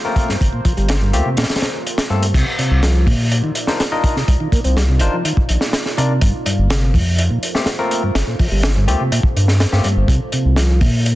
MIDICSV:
0, 0, Header, 1, 6, 480
1, 0, Start_track
1, 0, Key_signature, -3, "minor"
1, 0, Tempo, 483871
1, 407, Time_signature, 4, 2, 24, 8
1, 11062, End_track
2, 0, Start_track
2, 0, Title_t, "Ambient pad"
2, 0, Program_c, 0, 92
2, 0, Note_on_c, 0, 58, 79
2, 0, Note_on_c, 0, 65, 70
2, 0, Note_on_c, 0, 69, 70
2, 0, Note_on_c, 0, 72, 85
2, 386, Note_off_c, 0, 69, 0
2, 408, Note_on_c, 0, 67, 72
2, 2287, Note_off_c, 0, 58, 0
2, 2287, Note_off_c, 0, 65, 0
2, 2288, Note_off_c, 0, 72, 0
2, 2308, Note_off_c, 0, 67, 0
2, 2325, Note_on_c, 0, 65, 71
2, 2325, Note_on_c, 0, 74, 87
2, 2326, Note_on_c, 0, 58, 78
2, 2327, Note_on_c, 0, 63, 74
2, 6128, Note_off_c, 0, 74, 0
2, 6129, Note_off_c, 0, 63, 0
2, 6168, Note_on_c, 0, 72, 89
2, 6169, Note_on_c, 0, 69, 74
2, 9969, Note_off_c, 0, 69, 0
2, 9969, Note_off_c, 0, 72, 0
2, 10009, Note_on_c, 0, 63, 73
2, 10010, Note_on_c, 0, 74, 89
2, 11062, Note_off_c, 0, 58, 0
2, 11062, Note_off_c, 0, 63, 0
2, 11062, Note_off_c, 0, 65, 0
2, 11062, Note_off_c, 0, 74, 0
2, 11062, End_track
3, 0, Start_track
3, 0, Title_t, "Tine electric piano"
3, 0, Program_c, 1, 4
3, 46, Note_on_c, 1, 70, 107
3, 47, Note_on_c, 1, 57, 96
3, 47, Note_on_c, 1, 58, 89
3, 47, Note_on_c, 1, 60, 86
3, 47, Note_on_c, 1, 65, 86
3, 275, Note_off_c, 1, 57, 0
3, 275, Note_off_c, 1, 58, 0
3, 275, Note_off_c, 1, 60, 0
3, 275, Note_off_c, 1, 65, 0
3, 275, Note_off_c, 1, 70, 0
3, 1124, Note_on_c, 1, 57, 98
3, 1124, Note_on_c, 1, 58, 88
3, 1124, Note_on_c, 1, 67, 107
3, 1125, Note_on_c, 1, 60, 89
3, 1125, Note_on_c, 1, 65, 88
3, 1269, Note_off_c, 1, 57, 0
3, 1269, Note_off_c, 1, 58, 0
3, 1269, Note_off_c, 1, 60, 0
3, 1269, Note_off_c, 1, 65, 0
3, 1269, Note_off_c, 1, 67, 0
3, 2086, Note_on_c, 1, 69, 94
3, 2087, Note_on_c, 1, 57, 86
3, 2087, Note_on_c, 1, 58, 79
3, 2087, Note_on_c, 1, 60, 80
3, 2087, Note_on_c, 1, 65, 78
3, 2230, Note_off_c, 1, 57, 0
3, 2230, Note_off_c, 1, 58, 0
3, 2230, Note_off_c, 1, 60, 0
3, 2230, Note_off_c, 1, 65, 0
3, 2230, Note_off_c, 1, 69, 0
3, 3649, Note_on_c, 1, 62, 88
3, 3649, Note_on_c, 1, 65, 78
3, 3649, Note_on_c, 1, 72, 95
3, 3650, Note_on_c, 1, 63, 79
3, 3650, Note_on_c, 1, 70, 76
3, 3790, Note_off_c, 1, 62, 0
3, 3790, Note_off_c, 1, 63, 0
3, 3790, Note_off_c, 1, 65, 0
3, 3790, Note_off_c, 1, 70, 0
3, 3790, Note_off_c, 1, 72, 0
3, 3887, Note_on_c, 1, 62, 95
3, 3887, Note_on_c, 1, 63, 86
3, 3887, Note_on_c, 1, 70, 88
3, 3888, Note_on_c, 1, 65, 89
3, 3888, Note_on_c, 1, 75, 109
3, 4115, Note_off_c, 1, 62, 0
3, 4115, Note_off_c, 1, 63, 0
3, 4115, Note_off_c, 1, 70, 0
3, 4116, Note_off_c, 1, 65, 0
3, 4116, Note_off_c, 1, 75, 0
3, 4967, Note_on_c, 1, 62, 96
3, 4967, Note_on_c, 1, 63, 89
3, 4967, Note_on_c, 1, 65, 88
3, 4967, Note_on_c, 1, 70, 88
3, 4967, Note_on_c, 1, 72, 108
3, 5110, Note_off_c, 1, 62, 0
3, 5110, Note_off_c, 1, 63, 0
3, 5110, Note_off_c, 1, 65, 0
3, 5110, Note_off_c, 1, 70, 0
3, 5110, Note_off_c, 1, 72, 0
3, 5928, Note_on_c, 1, 63, 78
3, 5929, Note_on_c, 1, 62, 88
3, 5929, Note_on_c, 1, 65, 79
3, 5929, Note_on_c, 1, 70, 80
3, 5929, Note_on_c, 1, 74, 95
3, 6071, Note_off_c, 1, 62, 0
3, 6071, Note_off_c, 1, 63, 0
3, 6071, Note_off_c, 1, 65, 0
3, 6071, Note_off_c, 1, 70, 0
3, 6071, Note_off_c, 1, 74, 0
3, 7486, Note_on_c, 1, 58, 80
3, 7486, Note_on_c, 1, 60, 80
3, 7486, Note_on_c, 1, 65, 82
3, 7486, Note_on_c, 1, 67, 96
3, 7487, Note_on_c, 1, 57, 87
3, 7628, Note_off_c, 1, 58, 0
3, 7628, Note_off_c, 1, 65, 0
3, 7628, Note_off_c, 1, 67, 0
3, 7629, Note_off_c, 1, 57, 0
3, 7629, Note_off_c, 1, 60, 0
3, 7726, Note_on_c, 1, 57, 99
3, 7727, Note_on_c, 1, 65, 89
3, 7728, Note_on_c, 1, 58, 89
3, 7728, Note_on_c, 1, 60, 90
3, 7728, Note_on_c, 1, 70, 108
3, 7955, Note_off_c, 1, 57, 0
3, 7955, Note_off_c, 1, 58, 0
3, 7955, Note_off_c, 1, 60, 0
3, 7955, Note_off_c, 1, 65, 0
3, 7955, Note_off_c, 1, 70, 0
3, 8804, Note_on_c, 1, 57, 95
3, 8805, Note_on_c, 1, 58, 92
3, 8805, Note_on_c, 1, 60, 89
3, 8805, Note_on_c, 1, 65, 92
3, 8805, Note_on_c, 1, 67, 109
3, 8949, Note_off_c, 1, 57, 0
3, 8949, Note_off_c, 1, 58, 0
3, 8949, Note_off_c, 1, 60, 0
3, 8949, Note_off_c, 1, 65, 0
3, 8949, Note_off_c, 1, 67, 0
3, 9646, Note_on_c, 1, 57, 88
3, 9647, Note_on_c, 1, 58, 82
3, 9647, Note_on_c, 1, 60, 81
3, 9647, Note_on_c, 1, 65, 83
3, 9647, Note_on_c, 1, 67, 100
3, 9788, Note_off_c, 1, 57, 0
3, 9789, Note_off_c, 1, 58, 0
3, 9789, Note_off_c, 1, 60, 0
3, 9789, Note_off_c, 1, 65, 0
3, 9789, Note_off_c, 1, 67, 0
3, 11062, End_track
4, 0, Start_track
4, 0, Title_t, "Tonewheel organ"
4, 0, Program_c, 2, 16
4, 285, Note_on_c, 2, 43, 77
4, 364, Note_off_c, 2, 43, 0
4, 522, Note_on_c, 2, 46, 76
4, 603, Note_off_c, 2, 46, 0
4, 644, Note_on_c, 2, 53, 75
4, 724, Note_off_c, 2, 53, 0
4, 764, Note_on_c, 2, 55, 101
4, 879, Note_off_c, 2, 55, 0
4, 884, Note_on_c, 2, 50, 81
4, 964, Note_off_c, 2, 50, 0
4, 1004, Note_on_c, 2, 43, 105
4, 1119, Note_off_c, 2, 43, 0
4, 1246, Note_on_c, 2, 48, 78
4, 1354, Note_off_c, 2, 48, 0
4, 1362, Note_on_c, 2, 46, 100
4, 1443, Note_off_c, 2, 46, 0
4, 2083, Note_on_c, 2, 43, 104
4, 2313, Note_off_c, 2, 43, 0
4, 2323, Note_on_c, 2, 48, 88
4, 2440, Note_off_c, 2, 48, 0
4, 2565, Note_on_c, 2, 48, 79
4, 2794, Note_off_c, 2, 48, 0
4, 2805, Note_on_c, 2, 53, 87
4, 3034, Note_off_c, 2, 53, 0
4, 3045, Note_on_c, 2, 46, 104
4, 3395, Note_off_c, 2, 46, 0
4, 3409, Note_on_c, 2, 51, 80
4, 3486, Note_off_c, 2, 51, 0
4, 4127, Note_on_c, 2, 48, 77
4, 4205, Note_off_c, 2, 48, 0
4, 4368, Note_on_c, 2, 51, 77
4, 4445, Note_off_c, 2, 51, 0
4, 4487, Note_on_c, 2, 58, 77
4, 4566, Note_off_c, 2, 58, 0
4, 4607, Note_on_c, 2, 60, 105
4, 4720, Note_off_c, 2, 60, 0
4, 4726, Note_on_c, 2, 55, 83
4, 4806, Note_off_c, 2, 55, 0
4, 4848, Note_on_c, 2, 48, 102
4, 4961, Note_off_c, 2, 48, 0
4, 5091, Note_on_c, 2, 53, 77
4, 5196, Note_off_c, 2, 53, 0
4, 5208, Note_on_c, 2, 51, 103
4, 5286, Note_off_c, 2, 51, 0
4, 5927, Note_on_c, 2, 48, 105
4, 6155, Note_off_c, 2, 48, 0
4, 6165, Note_on_c, 2, 43, 90
4, 6281, Note_off_c, 2, 43, 0
4, 6404, Note_on_c, 2, 43, 76
4, 6634, Note_off_c, 2, 43, 0
4, 6646, Note_on_c, 2, 48, 87
4, 6875, Note_off_c, 2, 48, 0
4, 6885, Note_on_c, 2, 41, 105
4, 7235, Note_off_c, 2, 41, 0
4, 7247, Note_on_c, 2, 46, 81
4, 7325, Note_off_c, 2, 46, 0
4, 7968, Note_on_c, 2, 43, 79
4, 8045, Note_off_c, 2, 43, 0
4, 8207, Note_on_c, 2, 46, 79
4, 8285, Note_off_c, 2, 46, 0
4, 8328, Note_on_c, 2, 53, 80
4, 8407, Note_off_c, 2, 53, 0
4, 8449, Note_on_c, 2, 55, 104
4, 8561, Note_off_c, 2, 55, 0
4, 8569, Note_on_c, 2, 50, 84
4, 8647, Note_off_c, 2, 50, 0
4, 8691, Note_on_c, 2, 43, 103
4, 8802, Note_off_c, 2, 43, 0
4, 8932, Note_on_c, 2, 48, 76
4, 9037, Note_off_c, 2, 48, 0
4, 9049, Note_on_c, 2, 46, 106
4, 9127, Note_off_c, 2, 46, 0
4, 9768, Note_on_c, 2, 43, 101
4, 9996, Note_off_c, 2, 43, 0
4, 10007, Note_on_c, 2, 48, 90
4, 10122, Note_off_c, 2, 48, 0
4, 10246, Note_on_c, 2, 48, 77
4, 10475, Note_off_c, 2, 48, 0
4, 10485, Note_on_c, 2, 53, 87
4, 10714, Note_off_c, 2, 53, 0
4, 10727, Note_on_c, 2, 46, 105
4, 11062, Note_off_c, 2, 46, 0
4, 11062, End_track
5, 0, Start_track
5, 0, Title_t, "Sub bass"
5, 0, Program_c, 3, 38
5, 408, Note_on_c, 3, 31, 101
5, 487, Note_off_c, 3, 31, 0
5, 768, Note_on_c, 3, 31, 100
5, 1128, Note_on_c, 3, 38, 97
5, 1143, Note_off_c, 3, 31, 0
5, 1208, Note_off_c, 3, 38, 0
5, 2326, Note_on_c, 3, 36, 104
5, 2406, Note_off_c, 3, 36, 0
5, 2686, Note_on_c, 3, 36, 99
5, 3044, Note_on_c, 3, 31, 97
5, 3059, Note_off_c, 3, 36, 0
5, 3125, Note_off_c, 3, 31, 0
5, 4247, Note_on_c, 3, 36, 104
5, 4327, Note_off_c, 3, 36, 0
5, 4611, Note_on_c, 3, 36, 100
5, 4970, Note_on_c, 3, 31, 99
5, 4985, Note_off_c, 3, 36, 0
5, 5048, Note_off_c, 3, 31, 0
5, 5451, Note_on_c, 3, 34, 102
5, 5529, Note_off_c, 3, 34, 0
5, 6168, Note_on_c, 3, 31, 103
5, 6248, Note_off_c, 3, 31, 0
5, 6531, Note_on_c, 3, 31, 99
5, 6884, Note_on_c, 3, 38, 100
5, 6899, Note_off_c, 3, 31, 0
5, 6966, Note_off_c, 3, 38, 0
5, 8084, Note_on_c, 3, 31, 104
5, 8166, Note_off_c, 3, 31, 0
5, 8444, Note_on_c, 3, 31, 99
5, 8804, Note_on_c, 3, 38, 100
5, 8819, Note_off_c, 3, 31, 0
5, 8886, Note_off_c, 3, 38, 0
5, 9287, Note_on_c, 3, 43, 78
5, 9583, Note_off_c, 3, 43, 0
5, 9649, Note_on_c, 3, 43, 87
5, 9727, Note_off_c, 3, 43, 0
5, 9886, Note_on_c, 3, 31, 86
5, 9966, Note_off_c, 3, 31, 0
5, 10001, Note_on_c, 3, 36, 100
5, 10084, Note_off_c, 3, 36, 0
5, 10368, Note_on_c, 3, 36, 100
5, 10726, Note_on_c, 3, 31, 99
5, 10741, Note_off_c, 3, 36, 0
5, 10807, Note_off_c, 3, 31, 0
5, 11062, End_track
6, 0, Start_track
6, 0, Title_t, "Drums"
6, 158, Note_on_c, 9, 36, 103
6, 160, Note_on_c, 9, 42, 75
6, 258, Note_off_c, 9, 36, 0
6, 260, Note_off_c, 9, 42, 0
6, 289, Note_on_c, 9, 38, 37
6, 388, Note_off_c, 9, 38, 0
6, 407, Note_on_c, 9, 36, 116
6, 411, Note_on_c, 9, 42, 85
6, 506, Note_off_c, 9, 36, 0
6, 510, Note_off_c, 9, 42, 0
6, 644, Note_on_c, 9, 42, 71
6, 645, Note_on_c, 9, 36, 102
6, 743, Note_off_c, 9, 42, 0
6, 745, Note_off_c, 9, 36, 0
6, 767, Note_on_c, 9, 42, 43
6, 866, Note_off_c, 9, 42, 0
6, 878, Note_on_c, 9, 42, 84
6, 891, Note_on_c, 9, 38, 114
6, 978, Note_off_c, 9, 42, 0
6, 990, Note_off_c, 9, 38, 0
6, 1125, Note_on_c, 9, 42, 65
6, 1224, Note_off_c, 9, 42, 0
6, 1359, Note_on_c, 9, 42, 61
6, 1371, Note_on_c, 9, 38, 89
6, 1421, Note_off_c, 9, 38, 0
6, 1421, Note_on_c, 9, 38, 86
6, 1424, Note_off_c, 9, 42, 0
6, 1424, Note_on_c, 9, 42, 62
6, 1482, Note_off_c, 9, 42, 0
6, 1482, Note_on_c, 9, 42, 69
6, 1487, Note_off_c, 9, 38, 0
6, 1487, Note_on_c, 9, 38, 87
6, 1545, Note_off_c, 9, 42, 0
6, 1545, Note_on_c, 9, 42, 68
6, 1547, Note_off_c, 9, 38, 0
6, 1547, Note_on_c, 9, 38, 95
6, 1603, Note_off_c, 9, 42, 0
6, 1603, Note_on_c, 9, 42, 83
6, 1609, Note_off_c, 9, 38, 0
6, 1609, Note_on_c, 9, 38, 99
6, 1703, Note_off_c, 9, 42, 0
6, 1708, Note_off_c, 9, 38, 0
6, 1851, Note_on_c, 9, 42, 65
6, 1950, Note_off_c, 9, 42, 0
6, 1963, Note_on_c, 9, 38, 111
6, 1968, Note_on_c, 9, 42, 85
6, 2062, Note_off_c, 9, 38, 0
6, 2067, Note_off_c, 9, 42, 0
6, 2207, Note_on_c, 9, 42, 67
6, 2306, Note_off_c, 9, 42, 0
6, 2325, Note_on_c, 9, 36, 113
6, 2327, Note_on_c, 9, 42, 90
6, 2329, Note_on_c, 9, 49, 97
6, 2424, Note_off_c, 9, 36, 0
6, 2427, Note_off_c, 9, 42, 0
6, 2429, Note_off_c, 9, 49, 0
6, 2568, Note_on_c, 9, 42, 72
6, 2667, Note_off_c, 9, 42, 0
6, 2805, Note_on_c, 9, 38, 120
6, 2807, Note_on_c, 9, 42, 86
6, 2905, Note_off_c, 9, 38, 0
6, 2906, Note_off_c, 9, 42, 0
6, 3043, Note_on_c, 9, 36, 96
6, 3047, Note_on_c, 9, 46, 81
6, 3143, Note_off_c, 9, 36, 0
6, 3147, Note_off_c, 9, 46, 0
6, 3288, Note_on_c, 9, 42, 81
6, 3388, Note_off_c, 9, 42, 0
6, 3523, Note_on_c, 9, 42, 66
6, 3622, Note_off_c, 9, 42, 0
6, 3644, Note_on_c, 9, 38, 53
6, 3743, Note_off_c, 9, 38, 0
6, 3769, Note_on_c, 9, 42, 84
6, 3771, Note_on_c, 9, 38, 122
6, 3868, Note_off_c, 9, 42, 0
6, 3871, Note_off_c, 9, 38, 0
6, 4005, Note_on_c, 9, 36, 96
6, 4005, Note_on_c, 9, 42, 75
6, 4104, Note_off_c, 9, 36, 0
6, 4104, Note_off_c, 9, 42, 0
6, 4130, Note_on_c, 9, 38, 35
6, 4230, Note_off_c, 9, 38, 0
6, 4245, Note_on_c, 9, 42, 82
6, 4247, Note_on_c, 9, 36, 116
6, 4345, Note_off_c, 9, 42, 0
6, 4346, Note_off_c, 9, 36, 0
6, 4486, Note_on_c, 9, 36, 105
6, 4490, Note_on_c, 9, 42, 67
6, 4585, Note_off_c, 9, 36, 0
6, 4590, Note_off_c, 9, 42, 0
6, 4607, Note_on_c, 9, 42, 48
6, 4706, Note_off_c, 9, 42, 0
6, 4729, Note_on_c, 9, 38, 104
6, 4735, Note_on_c, 9, 42, 94
6, 4829, Note_off_c, 9, 38, 0
6, 4834, Note_off_c, 9, 42, 0
6, 4955, Note_on_c, 9, 42, 71
6, 5054, Note_off_c, 9, 42, 0
6, 5208, Note_on_c, 9, 42, 81
6, 5307, Note_off_c, 9, 42, 0
6, 5328, Note_on_c, 9, 36, 103
6, 5427, Note_off_c, 9, 36, 0
6, 5444, Note_on_c, 9, 42, 74
6, 5543, Note_off_c, 9, 42, 0
6, 5564, Note_on_c, 9, 38, 57
6, 5663, Note_off_c, 9, 38, 0
6, 5685, Note_on_c, 9, 38, 121
6, 5688, Note_on_c, 9, 42, 92
6, 5784, Note_off_c, 9, 38, 0
6, 5788, Note_off_c, 9, 42, 0
6, 5809, Note_on_c, 9, 38, 46
6, 5908, Note_off_c, 9, 38, 0
6, 5934, Note_on_c, 9, 42, 72
6, 6033, Note_off_c, 9, 42, 0
6, 6164, Note_on_c, 9, 42, 89
6, 6168, Note_on_c, 9, 36, 110
6, 6264, Note_off_c, 9, 42, 0
6, 6267, Note_off_c, 9, 36, 0
6, 6408, Note_on_c, 9, 42, 77
6, 6507, Note_off_c, 9, 42, 0
6, 6650, Note_on_c, 9, 42, 90
6, 6651, Note_on_c, 9, 38, 115
6, 6749, Note_off_c, 9, 42, 0
6, 6751, Note_off_c, 9, 38, 0
6, 6885, Note_on_c, 9, 36, 95
6, 6892, Note_on_c, 9, 46, 77
6, 6984, Note_off_c, 9, 36, 0
6, 6992, Note_off_c, 9, 46, 0
6, 7127, Note_on_c, 9, 42, 97
6, 7227, Note_off_c, 9, 42, 0
6, 7368, Note_on_c, 9, 42, 70
6, 7467, Note_off_c, 9, 42, 0
6, 7489, Note_on_c, 9, 38, 60
6, 7588, Note_off_c, 9, 38, 0
6, 7598, Note_on_c, 9, 38, 118
6, 7602, Note_on_c, 9, 42, 90
6, 7697, Note_off_c, 9, 38, 0
6, 7702, Note_off_c, 9, 42, 0
6, 7849, Note_on_c, 9, 42, 66
6, 7948, Note_off_c, 9, 42, 0
6, 8087, Note_on_c, 9, 38, 97
6, 8088, Note_on_c, 9, 42, 86
6, 8186, Note_off_c, 9, 38, 0
6, 8187, Note_off_c, 9, 42, 0
6, 8327, Note_on_c, 9, 46, 81
6, 8328, Note_on_c, 9, 36, 86
6, 8426, Note_off_c, 9, 46, 0
6, 8427, Note_off_c, 9, 36, 0
6, 8564, Note_on_c, 9, 42, 92
6, 8566, Note_on_c, 9, 38, 123
6, 8663, Note_off_c, 9, 42, 0
6, 8665, Note_off_c, 9, 38, 0
6, 8809, Note_on_c, 9, 42, 67
6, 8908, Note_off_c, 9, 42, 0
6, 9047, Note_on_c, 9, 42, 90
6, 9147, Note_off_c, 9, 42, 0
6, 9160, Note_on_c, 9, 36, 105
6, 9259, Note_off_c, 9, 36, 0
6, 9291, Note_on_c, 9, 42, 65
6, 9390, Note_off_c, 9, 42, 0
6, 9406, Note_on_c, 9, 38, 53
6, 9505, Note_off_c, 9, 38, 0
6, 9525, Note_on_c, 9, 42, 87
6, 9526, Note_on_c, 9, 38, 115
6, 9624, Note_off_c, 9, 42, 0
6, 9625, Note_off_c, 9, 38, 0
6, 9648, Note_on_c, 9, 38, 47
6, 9747, Note_off_c, 9, 38, 0
6, 9761, Note_on_c, 9, 42, 73
6, 9860, Note_off_c, 9, 42, 0
6, 10001, Note_on_c, 9, 36, 117
6, 10011, Note_on_c, 9, 42, 92
6, 10100, Note_off_c, 9, 36, 0
6, 10110, Note_off_c, 9, 42, 0
6, 10240, Note_on_c, 9, 42, 63
6, 10339, Note_off_c, 9, 42, 0
6, 10479, Note_on_c, 9, 38, 115
6, 10488, Note_on_c, 9, 42, 95
6, 10579, Note_off_c, 9, 38, 0
6, 10588, Note_off_c, 9, 42, 0
6, 10722, Note_on_c, 9, 46, 78
6, 10725, Note_on_c, 9, 36, 104
6, 10821, Note_off_c, 9, 46, 0
6, 10825, Note_off_c, 9, 36, 0
6, 10971, Note_on_c, 9, 42, 85
6, 11062, Note_off_c, 9, 42, 0
6, 11062, End_track
0, 0, End_of_file